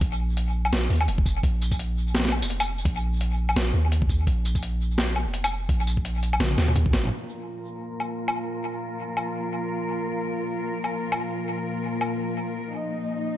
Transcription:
0.01 0.71 A#1 loud
0.01 kick loud
0.01 closed hi-hat medium
0.37 closed hi-hat medium
0.65 low woodblock soft
0.73 0.89 A#1 medium
0.73 snare loud
0.73 closed hi-hat medium
0.90 1.09 D#2 medium
0.90 closed hi-hat soft
0.93 closed hi-hat soft
0.96 closed hi-hat soft
0.98 closed hi-hat soft
1.01 closed hi-hat soft
1.01 low woodblock medium
1.02 closed hi-hat soft
1.05 closed hi-hat soft
1.06 1.42 F1 loud
1.06 closed hi-hat soft
1.08 closed hi-hat medium
1.18 kick loud
1.26 kick medium
1.26 tambourine soft
1.43 2.44 A#1 loud
1.43 kick loud
1.43 closed hi-hat medium
1.62 tambourine soft
1.72 kick medium
1.72 tambourine soft
1.79 closed hi-hat medium
2.15 snare loud
2.15 closed hi-hat medium
2.20 snare medium
2.25 snare medium
2.28 snare medium
2.28 low woodblock soft
2.42 2.84 F1 loud
2.42 tambourine medium
2.50 closed hi-hat medium
2.60 tambourine medium
2.60 low woodblock medium
2.85 3.55 A#1 loud
2.85 kick loud
2.85 closed hi-hat medium
3.21 closed hi-hat medium
3.49 low woodblock medium
3.56 3.73 A#1 medium
3.56 snare loud
3.56 closed hi-hat medium
3.74 4.26 D#2 medium
3.92 closed hi-hat medium
4.02 kick loud
4.09 kick medium
4.09 tambourine soft
4.27 5.28 A#1 loud
4.27 kick loud
4.27 closed hi-hat medium
4.45 tambourine soft
4.55 kick medium
4.55 tambourine soft
4.63 closed hi-hat medium
4.98 snare loud
5.16 low woodblock soft
5.26 5.68 F1 medium
5.34 closed hi-hat medium
5.44 tambourine medium
5.44 low woodblock medium
5.69 6.39 A#1 loud
5.69 kick loud
5.69 closed hi-hat medium
5.87 tambourine soft
5.97 kick medium
6.05 closed hi-hat medium
6.23 closed hi-hat soft
6.33 low woodblock medium
6.40 6.57 A#1 medium
6.40 snare loud
6.40 closed hi-hat medium
6.40 high tom medium
6.51 high tom medium
6.58 6.75 D#2 medium
6.58 snare medium
6.58 closed hi-hat soft
6.68 mid tom medium
6.76 6.95 D#2 loud
6.76 closed hi-hat medium
6.76 mid tom medium
6.86 kick loud
6.93 7.10 G#1 loud
6.93 kick medium
6.93 snare loud
6.93 closed hi-hat soft
6.93 tambourine soft
7.04 mid tom soft
7.05 mid tom medium
7.07 mid tom medium
7.09 13.37 A#2 medium
7.09 13.37 F3 medium
7.09 12.75 F4 medium
7.09 12.77 A#4 medium
7.09 mid tom medium
8.00 low woodblock soft
8.28 low woodblock medium
9.17 low woodblock soft
10.84 low woodblock soft
11.12 low woodblock medium
12.01 low woodblock soft
12.79 13.37 D#4 medium
12.79 13.37 D#5 medium

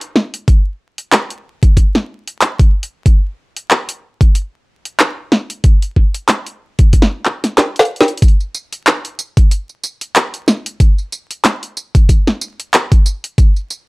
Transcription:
0.01 closed hi-hat soft
0.16 snare soft
0.34 closed hi-hat soft
0.48 kick loud
0.48 closed hi-hat medium
0.98 closed hi-hat soft
1.12 clap loud
1.12 snare soft
1.12 closed hi-hat medium
1.30 closed hi-hat soft
1.63 kick loud
1.63 closed hi-hat soft
1.77 kick medium
1.77 closed hi-hat medium
1.95 snare medium
2.27 closed hi-hat soft
2.41 clap loud
2.41 closed hi-hat medium
2.59 kick medium
2.59 closed hi-hat soft
2.83 closed hi-hat soft
3.06 kick loud
3.06 closed hi-hat medium
3.56 closed hi-hat soft
3.71 clap loud
3.89 closed hi-hat medium
4.21 kick loud
4.21 closed hi-hat soft
4.35 closed hi-hat medium
4.85 closed hi-hat soft
5.00 clap loud
5.00 closed hi-hat medium
5.32 snare medium
5.50 closed hi-hat soft
5.64 kick loud
5.64 closed hi-hat medium
5.82 closed hi-hat soft
5.96 kick medium
6.14 closed hi-hat medium
6.29 clap loud
6.29 snare soft
6.29 closed hi-hat medium
6.46 closed hi-hat soft
6.79 kick loud
6.79 closed hi-hat medium
6.93 kick medium
6.93 closed hi-hat medium
7.02 snare medium
7.25 clap medium
7.44 snare soft
7.44 closed hi-hat medium
7.58 snare medium
7.58 clap loud
7.58 closed hi-hat medium
7.76 snare medium
7.76 closed hi-hat soft
7.85 closed hi-hat soft
7.96 closed hi-hat soft
8.01 snare loud
8.08 closed hi-hat soft
8.17 closed hi-hat soft
8.22 kick loud
8.22 closed hi-hat medium
8.22 tambourine soft
8.28 closed hi-hat soft
8.40 tambourine soft
8.55 tambourine medium
8.73 closed hi-hat medium
8.73 tambourine soft
8.87 clap loud
8.87 closed hi-hat medium
8.87 tambourine soft
9.05 closed hi-hat soft
9.05 tambourine soft
9.19 tambourine medium
9.37 kick loud
9.37 closed hi-hat medium
9.37 tambourine soft
9.51 closed hi-hat medium
9.51 tambourine soft
9.69 tambourine soft
9.83 tambourine medium
10.01 closed hi-hat medium
10.01 tambourine soft
10.16 clap loud
10.16 closed hi-hat medium
10.16 tambourine soft
10.34 closed hi-hat soft
10.34 tambourine soft
10.48 snare medium
10.48 tambourine medium
10.66 closed hi-hat medium
10.66 tambourine soft
10.80 kick loud
10.80 closed hi-hat medium
10.80 tambourine soft
10.98 tambourine soft
11.12 tambourine medium
11.31 closed hi-hat medium
11.31 tambourine soft
11.45 clap loud
11.45 snare soft
11.45 closed hi-hat medium
11.45 tambourine soft
11.63 closed hi-hat soft
11.63 tambourine soft
11.77 tambourine medium
11.95 kick loud
11.95 closed hi-hat medium
11.95 tambourine soft
12.09 kick medium
12.09 closed hi-hat medium
12.09 tambourine soft
12.27 snare medium
12.27 tambourine soft
12.41 tambourine medium
12.60 closed hi-hat medium
12.60 tambourine soft
12.74 clap loud
12.74 closed hi-hat medium
12.74 tambourine soft
12.92 kick loud
12.92 closed hi-hat soft
12.92 tambourine soft
13.06 tambourine medium
13.24 closed hi-hat medium
13.24 tambourine soft
13.38 kick loud
13.38 closed hi-hat medium
13.38 tambourine soft
13.56 tambourine soft
13.70 tambourine medium

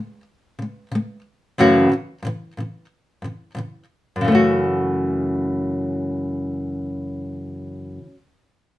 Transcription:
0.00 0.20 C#3 soft
0.00 0.22 G#3 medium
0.59 0.86 C#3 soft
0.59 0.88 G#3 soft
0.92 1.19 C#3 medium
0.92 1.21 G#3 medium
1.58 1.88 F#2 medium
1.58 1.90 C#3 medium
1.58 1.92 E3 medium
1.58 1.92 A3 medium
1.58 1.92 C#4 medium
1.58 1.92 F#4 medium
1.92 2.19 C#3 soft
1.92 2.19 E3 medium
2.23 2.51 F#2 medium
2.23 2.52 C#3 medium
2.27 2.53 E3 medium
2.57 2.84 F#2 soft
2.57 2.85 C#3 soft
2.57 2.86 E3 soft
3.22 3.50 F#2 soft
3.22 3.51 C#3 soft
3.22 3.52 E3 soft
3.55 3.83 F#2 medium
3.55 3.84 C#3 soft
3.55 3.85 E3 medium
4.16 7.98 F#2 medium
4.21 8.03 C#3 medium
4.21 8.07 E3 medium
4.28 8.10 A3 medium
4.32 8.14 C#4 medium
4.32 8.17 F#4 medium

